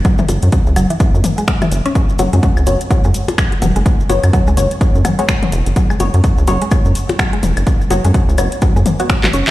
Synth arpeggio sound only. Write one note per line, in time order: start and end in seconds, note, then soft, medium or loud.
0.05 0.12 F#3 loud
0.19 0.22 E3 medium
0.76 0.83 F#3 loud
0.90 0.93 E3 medium
1.38 1.43 G#3 medium
1.48 1.52 F#3 medium
1.62 1.65 E3 loud
1.86 1.88 C#4 loud
2.19 2.26 F#3 loud
2.33 2.36 G#3 medium
2.91 2.97 F#3 loud
3.05 3.07 G#3 medium
3.62 3.69 F#3 loud
3.76 3.79 G#3 medium
4.33 4.40 F#3 loud
4.47 4.50 G#3 medium
5.05 5.12 F#3 loud
5.19 5.22 G#3 medium
5.76 5.83 F#3 loud
5.90 5.93 G#3 medium
6.48 6.54 F#3 loud
6.62 6.65 G#3 medium
7.19 7.26 F#3 loud
7.33 7.36 G#3 medium
7.91 7.97 F#3 loud
8.05 8.08 G#3 medium
8.62 8.69 F#3 loud
8.76 8.79 G#3 medium
9.00 9.05 F#4 medium
9.24 9.26 F#4 loud
9.34 9.44 C#4 loud